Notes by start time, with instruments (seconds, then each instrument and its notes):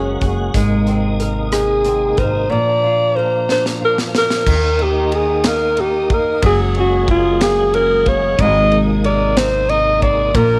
Already playing: upright bass F#1, tonewheel organ C#3 F#3 G#3 A#3 F#4, nylon-string guitar F#3 A#3 C#4 G#4, alto saxophone G#4
0.21 upright bass F#1, nylon-string guitar G#4, kick, closed hi-hat
0.54 upright bass G#1, tonewheel organ C3 D#3 G#3 D#4, nylon-string guitar G#3, kick, closed hi-hat
0.87 nylon-string guitar C4, closed hi-hat
1.20 nylon-string guitar A#4, closed hi-hat
1.52 nylon-string guitar D#4, alto saxophone G#4, cross-stick, closed hi-hat
1.85 nylon-string guitar C4, closed hi-hat
2.17 upright bass G#1, nylon-string guitar A#4, alto saxophone C5, kick, closed hi-hat
2.50 nylon-string guitar A#2, tonewheel organ F3 A#3 D4, alto saxophone D5
2.84 nylon-string guitar F4
3.16 nylon-string guitar A#4, alto saxophone C5
3.49 nylon-string guitar D4, alto saxophone C5, snare
3.66 snare
3.81 nylon-string guitar F4, alto saxophone A#4
3.98 snare
4.15 nylon-string guitar A#4, alto saxophone A#4, snare
4.30 snare
4.47 upright bass D#2, nylon-string guitar D#3, tonewheel organ D#3 A#3 D#4, kick, crash
4.79 nylon-string guitar D#4, alto saxophone G4, ride
5.12 alto saxophone G#4, ride
5.44 nylon-string guitar A#3, alto saxophone A#4, snare, ride
5.77 nylon-string guitar D#4, alto saxophone G4, ride
6.10 nylon-string guitar A#3, alto saxophone A#4, kick, ride
6.42 upright bass F#1, tonewheel organ C#3 F#3 G#3 G#4, nylon-string guitar F#3, kick, ride
6.46 alto saxophone G#4
6.75 nylon-string guitar C#4, ride
6.80 alto saxophone F#4
7.08 alto saxophone F4, nylon-string guitar G#4, kick, ride
7.41 nylon-string guitar A#3, alto saxophone G#4, snare, ride
7.74 nylon-string guitar C#4, alto saxophone A#4, ride
8.06 nylon-string guitar A#3, alto saxophone C#5, kick, ride
8.37 upright bass G#1, tonewheel organ C3 D#3 D#4, nylon-string guitar G#3, kick, ride
8.41 alto saxophone D#5
8.72 nylon-string guitar D#4, ride
9.04 nylon-string guitar A#4, alto saxophone D5, ride
9.37 nylon-string guitar C4, alto saxophone C5, snare, ride
9.69 nylon-string guitar D#4, alto saxophone D#5, ride
10.02 nylon-string guitar C4, alto saxophone D5, kick, ride
10.34 upright bass A#1, nylon-string guitar A#2, tonewheel organ F3 D4, alto saxophone A#4, kick, ride